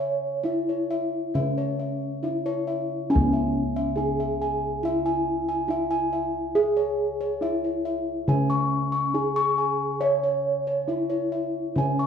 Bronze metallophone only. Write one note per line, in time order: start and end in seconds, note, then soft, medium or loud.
0.00 0.44 C#5 loud
0.44 1.34 E4 medium
1.34 2.23 C#4 medium
2.23 3.10 E4 medium
3.10 3.96 C#4 loud
3.96 4.82 G#4 medium
4.83 5.67 E4 medium
5.68 6.55 E4 medium
6.56 7.42 G#4 medium
7.42 8.28 E4 medium
8.28 9.14 C#4 medium
9.14 10.00 G#4 medium
10.01 10.87 C#5 loud
10.89 11.77 E4 medium
11.76 12.07 C#4 medium